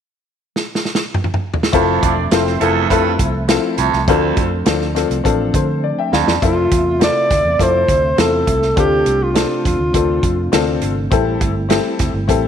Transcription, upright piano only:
1.72 C4 E4 F4 A4
2.31 C4 E4 F4 A4
2.60 C4 E4 F4 A4
2.90 C4 E4 F4 A4
3.48 C4 E4 F4 A4
4.08 C4 D4 F4 A4
4.65 C4 D4 F4 A4
4.95 C4 D4 F4 A4
5.24 C4 D4 F4 A4
5.55 A4 C5
5.84 D5
5.99 E5 G5
6.13 D5 F5
6.27 D5
6.42 C4 F4 A4 E5
6.99 C4 E4 F4 A4
7.58 C4 E4 F4 A4
8.17 C4 E4 F4 A4
8.76 C4 D4 F4 A4
9.34 C4 D4 F4 A4
9.93 C4 D4 F4 A4
10.52 C4 D4 F4 A4
11.11 C4 E4 G4 A4
11.69 C4 E4 G4 A4
12.28 C4 E4 G4 A4

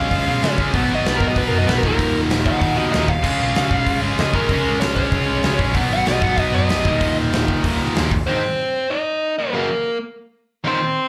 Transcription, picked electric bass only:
0.12 C#2
0.27 B2
0.43 C#3
0.59 C#2
0.74 B1
0.89 G#1
1.04 B1
1.21 G#2
1.36 B1
1.52 F#2
1.68 B1
1.83 D#1
1.99 D#1
2.14 D#1
2.30 D#1
2.46 C#2
2.62 D#1
2.77 C#2
2.93 D#2
3.08 D#1
3.24 C#2
3.40 B1
3.56 C#2
3.71 B1
3.87 C#2
4.02 G#1
4.19 C#2
4.34 G#1
4.49 C#2
4.65 C#2
4.81 C#2
4.97 B1
5.12 C#2
5.28 B1
5.44 C#2
5.60 A#1
5.75 B1
5.90 G#1
6.06 B1
6.22 G#2
6.38 B1
6.54 F#2
6.70 B1
6.85 D#1
7.01 D#1
7.17 D#1
7.33 D#1
7.48 C#2
7.64 D#1
7.80 C#2
7.96 D#2
8.12 D#1

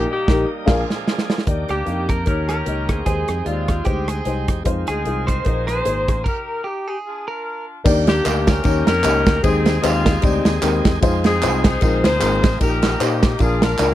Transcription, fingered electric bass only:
0.28 A#1
0.68 A#1
1.47 D#2
1.69 D2
1.87 F2
2.27 D#2
2.67 C#2
2.89 D2
3.07 D#2
3.29 F2
3.46 D#2
3.87 D2
4.26 C2
4.49 E2
4.66 F2
4.89 D2
5.06 C2
5.46 A#1
5.86 G#1
6.09 A1
7.86 D#2
8.26 D2
8.65 D#2
8.87 F2
9.04 C#2
9.27 D2
9.44 D#2
9.84 D#2
10.24 D2
10.45 D#2
10.63 D#2
10.85 E2
11.03 F2
11.43 C2
11.82 A#1
12.04 D2
12.21 G#1
12.44 A1
12.61 A#1
13.00 A#2
13.41 A#1
13.79 C#2

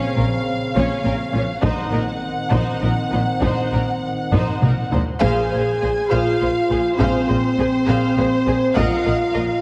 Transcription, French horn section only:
Already playing: C#3 C4
1.64 D#3 C4
5.21 G#4
6.11 F4
6.97 C4
8.77 F4

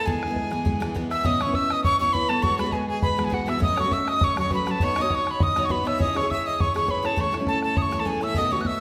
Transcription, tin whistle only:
0.06 G#5
1.11 E6
1.26 D#6
1.42 C#6
1.55 E6
1.72 D#6
1.84 C#6
2.00 C#6
2.13 B5
2.29 A5
2.43 C#6
2.59 B5
2.72 G#5
2.89 G#5
3.02 B5
3.25 G#5
3.34 F#5
3.49 E6
3.63 D#6
3.80 C#6
3.93 E6
4.09 D#6
4.24 C#6
4.39 C#6
4.54 B5
4.71 A5
4.84 C#6
5.02 D#6
5.15 C#6
5.31 B5
5.43 D#6
5.65 C#6
5.71 B5
5.87 E6
6.02 D#6
6.17 C#6
6.31 E6
6.46 D#6
6.61 C#6
6.77 C#6
6.91 B5
7.06 A5
7.20 C#6
7.48 A5
7.64 A5
7.77 D#6
7.82 C#6
8.00 A5
8.06 G#5
8.23 E6
8.37 D#6
8.52 C#6
8.61 F#6
8.67 E6

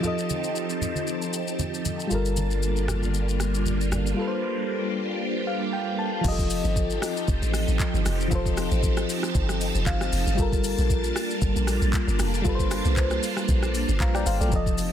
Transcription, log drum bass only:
6.25 F1
6.65 G1
7.28 F1
7.42 A1
7.68 A1
7.94 G1
8.06 F1
8.31 F1
8.71 A1
9.35 G1
9.75 F1
9.86 G1
10.12 F1
10.27 G1
10.38 G1
10.78 A#1
11.42 G1
11.56 A#1
11.82 A#1
12.08 G1
12.19 F1
12.45 G1
12.85 C2
13.49 A#1
13.89 G1
14.00 A#1
14.26 G1
14.40 A#1
14.52 F1

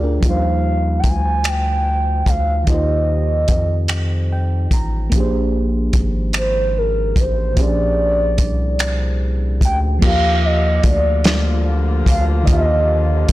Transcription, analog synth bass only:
Already playing: D2
0.24 D#2
1.05 D2
2.27 D2
2.68 D#2
3.49 F2
4.72 A1
5.13 A#1
5.95 G#1
7.17 A1
7.58 A#1
8.40 C2
9.62 D2
10.04 D#2
10.85 D2
12.07 D2
12.48 D#2

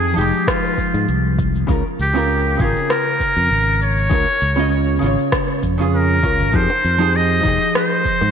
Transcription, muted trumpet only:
Already playing: G#4
0.18 G4
0.49 F4
2.01 G4
2.61 G#4
2.91 A#4
3.82 C#5
5.95 A#4
6.56 C5
7.16 D#5
7.76 C5

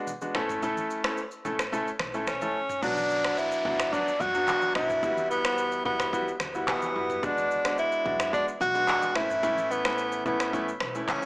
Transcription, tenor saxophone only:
2.28 C#4
2.83 D4
3.38 E4
3.92 D4
4.20 F#4
4.75 E4
5.30 B3
5.86 B3
6.68 B3
7.24 D4
7.79 E4
8.34 D4
8.61 F#4
9.16 E4
9.71 B3
10.26 B3
11.09 C#4

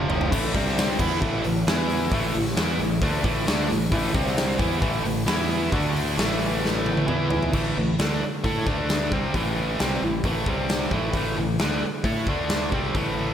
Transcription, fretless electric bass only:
0.11 F1
0.32 A1
0.55 C2
1.00 E2
1.23 A1
1.45 A1
1.67 E2
2.12 A1
2.35 A1
2.58 E2
2.80 A1
3.02 D2
3.24 A1
3.48 D2
3.71 A1
3.92 A1
4.15 C2
4.60 E2
4.83 A1
5.05 A1
5.28 E2
5.73 D2
6.17 A1
7.08 E2
7.53 A1
7.77 A1
8.00 D2
8.23 muted fretless electric bass stroke
8.45 A2
8.67 D2
9.12 C2
9.35 A1
9.81 C2
10.02 A1
10.24 A1
10.47 C2
10.92 A1
11.14 A1
11.38 A1
11.61 D2
11.84 muted fretless electric bass stroke
12.05 A2
12.28 D2
12.73 C2
12.95 A1

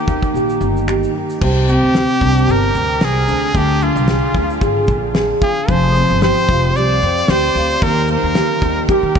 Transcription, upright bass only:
0.08 D#2
0.34 A#1
0.61 G1
1.41 C2
1.83 D2
2.21 C2
2.48 G1
2.75 D2
3.01 C2
3.28 D2
3.55 D2
3.96 C2
4.34 D2
4.61 G#1
4.88 A#1
5.68 F1
6.10 G1
6.49 F1
6.76 C2
7.02 F2
7.29 D2
7.55 D2
7.82 D#2
8.23 D#2
8.62 D#2
9.03 D#3
9.15 D#2

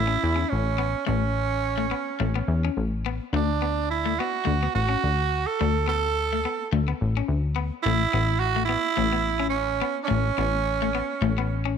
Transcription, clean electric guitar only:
0.07 C#4
0.36 C#4
0.78 B3
1.06 A3
1.78 A3
1.91 B3
2.20 A3
2.36 B3
2.65 C#4
3.06 B3
3.34 A3
3.62 B3
4.06 A3
4.20 B3
4.45 A3
4.63 B3
4.89 C#4
5.61 A3
5.88 B3
6.33 A3
6.45 B3
6.73 A3
6.88 B3
7.17 C#4
7.56 B3
7.86 A3
8.13 B3
8.56 A3
8.69 B3
8.97 A3
9.13 B3
9.39 C#4
9.82 B3
10.08 A3
10.38 B3
10.82 A3
10.95 B3
11.22 A3
11.38 B3
11.65 C#4

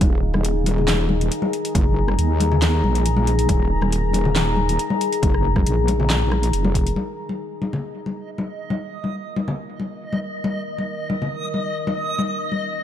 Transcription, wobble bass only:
0.01 D#1
1.75 F#1
2.19 D#2
2.84 A#1
3.49 D#1
5.23 F#1
5.66 A#1
6.53 F1

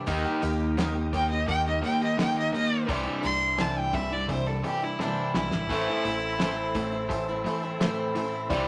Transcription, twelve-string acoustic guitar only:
0.06 D#3 A#3 D#4 G4
0.25 A#3 D#4 G4
0.42 D#3 A#3 D#4 G4
0.77 D#3 A#3 D#4 G4
0.96 A#3 D#4 G4
1.13 D#3 A#3 D#4 G4
1.32 A#3 D#4 G4
1.66 A#3 D#4 G4
1.85 D#3 A#3 D#4 G4
2.01 A#3 D#4 G4
2.20 D#3 A#3 D#4 G4
2.54 D#3 A#3 D#4 G4
2.89 C3 E3 G3 D4 E4
3.06 G3 D4 E4
3.22 E3 G3 D4 E4
3.58 C3 E3 G3 D4 E4
3.75 G3 D4 E4
3.92 E3 G3 D4 E4
4.12 G3 D4 E4
4.47 G3 D4 E4
4.65 E3 G3 D4 E4
4.82 G3 D4 E4
5.01 C3 E3 G3 D4 E4
5.37 E3 G3 D4 E4
5.72 A2 E3 A3 C4 E4
5.89 A3 C4 E4
6.04 E3 A3 C4 E4
6.41 A2 E3 A3 C4 E4
6.74 E3 A3 C4 E4
6.92 A3 C4 E4
7.28 A3 C4 E4
7.46 E3 A3 C4 E4
7.63 A3 C4 E4
7.81 A2 E3 A3 C4 E4
8.15 E3 A3 C4 E4
8.51 C3 E3 G3 D4 E4

